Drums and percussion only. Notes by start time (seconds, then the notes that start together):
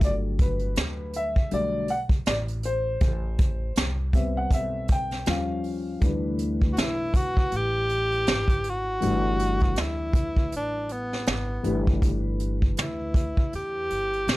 0.01 kick, closed hi-hat
0.39 kick, closed hi-hat
0.59 closed hi-hat
0.76 snare, closed hi-hat
1.13 closed hi-hat
1.36 kick
1.51 closed hi-hat
1.88 closed hi-hat
2.09 kick, closed hi-hat
2.26 snare, closed hi-hat
2.48 closed hi-hat
2.63 closed hi-hat
3.01 kick, closed hi-hat
3.38 kick, closed hi-hat
3.76 snare, closed hi-hat
4.13 kick, closed hi-hat
4.51 kick, closed hi-hat
4.88 kick, closed hi-hat
5.11 snare, closed hi-hat
5.26 snare, closed hi-hat
5.64 open hi-hat
6.01 kick, closed hi-hat
6.39 closed hi-hat
6.62 kick
6.77 snare, closed hi-hat
7.14 kick, closed hi-hat
7.37 kick
7.52 closed hi-hat
7.89 closed hi-hat
8.12 closed hi-hat
8.27 snare, closed hi-hat
8.48 kick, closed hi-hat
8.64 closed hi-hat
9.02 closed hi-hat
9.39 closed hi-hat
9.60 kick, closed hi-hat
9.76 snare, closed hi-hat
10.13 kick, closed hi-hat
10.37 kick
10.52 closed hi-hat
10.89 closed hi-hat
11.13 snare
11.26 snare, closed hi-hat
11.64 closed hi-hat
11.87 kick
12.02 kick, closed hi-hat
12.39 closed hi-hat
12.62 kick
12.77 snare, closed hi-hat
13.14 kick, closed hi-hat
13.37 kick
13.53 closed hi-hat
13.90 closed hi-hat
14.13 closed hi-hat
14.28 snare, closed hi-hat